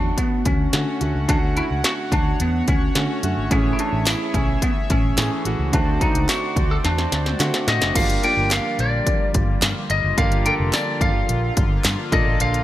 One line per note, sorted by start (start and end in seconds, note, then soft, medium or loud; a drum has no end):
0.00 0.11 E2 medium
0.00 0.73 D3 medium
0.00 0.73 A3 medium
0.00 0.73 C#4 medium
0.00 0.16 D4 medium
0.00 0.74 F#4 medium
0.00 3.47 F#4 medium
0.00 5.69 C#5 medium
0.00 3.47 F#5 medium
0.18 0.46 B3 medium
0.18 kick medium
0.18 closed hi-hat medium
0.45 0.67 D2 medium
0.45 0.98 C#4 medium
0.45 kick medium
0.45 closed hi-hat medium
0.73 0.95 D3 medium
0.73 0.84 D3 medium
0.73 0.95 A3 medium
0.73 0.95 C#4 medium
0.73 0.95 F#4 medium
0.73 snare loud
0.73 closed hi-hat medium
1.00 1.11 D2 medium
1.00 1.23 D3 medium
1.00 1.23 A3 medium
1.00 1.23 C#4 medium
1.00 1.23 F#4 medium
1.00 closed hi-hat medium
1.15 1.25 C#2 loud
1.28 1.60 D2 loud
1.28 2.16 D3 medium
1.28 2.16 A3 medium
1.28 2.16 C#4 medium
1.28 1.37 D4 loud
1.28 2.17 F#4 medium
1.28 kick loud
1.28 closed hi-hat medium
1.57 1.65 E4 loud
1.57 closed hi-hat medium
1.71 1.81 C#2 medium
1.84 1.93 F#4 loud
1.84 snare loud
1.84 closed hi-hat medium
2.12 2.33 D2 medium
2.12 2.41 D4 medium
2.12 kick medium
2.12 closed hi-hat medium
2.40 2.61 E2 medium
2.40 2.67 B3 medium
2.40 closed hi-hat medium
2.68 2.89 D2 medium
2.68 3.20 C#4 medium
2.68 kick medium
2.68 closed hi-hat medium
2.95 3.17 D3 medium
2.95 3.06 D3 loud
2.95 3.17 A3 medium
2.95 3.18 C#4 medium
2.95 3.18 F#4 medium
2.95 snare loud
2.95 closed hi-hat medium
3.23 3.34 F#2 medium
3.23 3.45 D3 medium
3.23 3.45 A3 medium
3.23 3.45 C#4 medium
3.23 3.46 F#4 medium
3.23 closed hi-hat medium
3.37 3.48 G#1 medium
3.51 3.72 A1 loud
3.51 4.38 E3 medium
3.51 4.39 A3 medium
3.51 4.39 C#4 medium
3.51 3.73 C#4 loud
3.51 5.71 G#4 medium
3.51 4.39 G#4 medium
3.51 5.71 E5 medium
3.51 kick loud
3.51 closed hi-hat medium
3.73 3.79 E4 medium
3.79 4.08 D4 medium
3.79 closed hi-hat medium
3.93 4.13 A1 medium
4.06 4.36 E4 loud
4.06 snare loud
4.06 clap loud
4.06 closed hi-hat medium
4.06 tambourine medium
4.34 4.55 B1 medium
4.34 4.63 C#4 medium
4.34 kick medium
4.34 closed hi-hat medium
4.62 4.71 B3 medium
4.62 kick medium
4.62 closed hi-hat medium
4.90 5.11 A1 medium
4.90 5.42 C#4 medium
4.90 kick medium
4.90 closed hi-hat medium
5.17 5.28 A2 loud
5.17 5.39 E3 medium
5.17 5.39 A3 medium
5.17 5.40 C#4 medium
5.17 5.40 G#4 medium
5.17 snare loud
5.17 clap medium
5.17 closed hi-hat loud
5.17 tambourine medium
5.45 5.56 A1 medium
5.45 5.67 E3 medium
5.45 5.67 A3 medium
5.45 5.67 C#4 medium
5.45 5.68 F#4 medium
5.45 closed hi-hat medium
5.59 5.70 C#2 medium
5.73 6.04 D2 loud
5.73 6.60 D3 medium
5.73 6.61 A3 medium
5.73 6.61 C4 medium
5.73 6.00 D4 medium
5.73 7.93 F#4 medium
5.73 6.61 F#4 medium
5.73 7.93 C5 medium
5.73 7.93 D5 medium
5.73 kick loud
5.73 closed hi-hat medium
6.01 6.27 D#4 medium
6.01 kick medium
6.01 closed hi-hat medium
6.15 6.25 C#2 medium
6.15 closed hi-hat medium
6.29 6.72 F#4 loud
6.29 snare loud
6.29 clap medium
6.29 closed hi-hat medium
6.29 tambourine medium
6.56 6.77 D2 medium
6.56 kick loud
6.56 closed hi-hat medium
6.71 6.76 A4 loud
6.84 7.05 E2 loud
6.84 7.37 D4 medium
6.84 snare medium
6.84 closed hi-hat medium
6.98 snare medium
7.12 7.33 D2 medium
7.12 snare medium
7.12 closed hi-hat medium
7.26 snare medium
7.39 7.61 D3 medium
7.39 7.50 D3 loud
7.39 7.62 A3 medium
7.39 7.62 C4 medium
7.39 7.62 F#4 medium
7.39 snare medium
7.39 clap medium
7.39 closed hi-hat medium
7.54 snare medium
7.67 7.78 A2 medium
7.67 7.89 D3 medium
7.67 7.89 A3 medium
7.67 7.90 C4 medium
7.67 7.90 F#4 medium
7.67 7.96 D#5 medium
7.67 snare loud
7.67 closed hi-hat medium
7.81 7.92 F#1 loud
7.81 snare loud
7.81 closed hi-hat medium
7.95 8.16 G1 loud
7.95 12.64 D3 medium
7.95 12.64 F3 medium
7.95 12.08 G3 medium
7.95 8.17 A#3 medium
7.95 12.64 A#3 medium
7.95 8.17 D4 medium
7.95 12.64 F4 medium
7.95 8.17 F4 medium
7.95 8.17 G4 medium
7.95 8.18 D5 medium
7.95 8.25 F5 loud
7.95 kick loud
7.95 closed hi-hat medium
7.95 crash loud
8.10 closed hi-hat medium
8.23 9.10 A#3 medium
8.23 9.11 D4 medium
8.23 9.11 F4 medium
8.23 9.11 G4 medium
8.23 9.11 D5 medium
8.23 8.52 G5 loud
8.23 closed hi-hat medium
8.37 8.58 G1 loud
8.51 8.80 F5 loud
8.51 snare loud
8.51 clap loud
8.51 closed hi-hat medium
8.51 tambourine medium
8.79 9.00 A#1 medium
8.79 9.31 D5 medium
8.79 closed hi-hat medium
9.07 kick medium
9.07 closed hi-hat medium
9.34 9.55 G1 loud
9.34 kick medium
9.34 closed hi-hat medium
9.62 9.73 G2 medium
9.62 snare loud
9.62 clap loud
9.62 closed hi-hat loud
9.62 tambourine medium
9.90 10.00 G1 medium
9.90 10.16 D#5 medium
9.90 closed hi-hat medium
10.04 10.14 F#1 loud
10.17 10.49 G1 loud
10.17 10.39 A#3 medium
10.17 10.39 D4 medium
10.17 10.40 F4 medium
10.17 10.40 G4 medium
10.17 10.40 D5 medium
10.17 10.47 F5 loud
10.17 kick loud
10.17 closed hi-hat loud
10.32 closed hi-hat medium
10.45 11.33 A#3 medium
10.45 11.33 D4 medium
10.45 11.33 F4 medium
10.45 11.33 G4 medium
10.45 11.33 A4 medium
10.45 10.54 G5 loud
10.45 closed hi-hat medium
10.60 10.70 F1 loud
10.73 11.01 D5 medium
10.73 snare loud
10.73 clap medium
10.73 closed hi-hat medium
10.73 tambourine medium
11.01 11.22 G1 medium
11.01 11.53 F5 medium
11.01 kick loud
11.01 closed hi-hat medium
11.29 11.50 A#1 medium
11.29 closed hi-hat medium
11.57 11.78 G1 medium
11.57 kick loud
11.57 closed hi-hat medium
11.84 11.95 G2 medium
11.84 snare loud
11.84 clap medium
11.84 closed hi-hat medium
11.84 tambourine medium
12.12 12.23 A#1 medium
12.12 12.56 A#3 medium
12.12 12.57 D4 medium
12.12 12.57 F4 medium
12.12 12.64 A4 medium
12.12 12.57 A4 medium
12.12 12.57 D5 medium
12.12 12.39 D#5 medium
12.12 kick loud
12.12 closed hi-hat medium
12.26 12.37 A1 loud
12.40 12.61 A#1 loud
12.40 12.64 F5 loud
12.40 closed hi-hat loud
12.54 closed hi-hat medium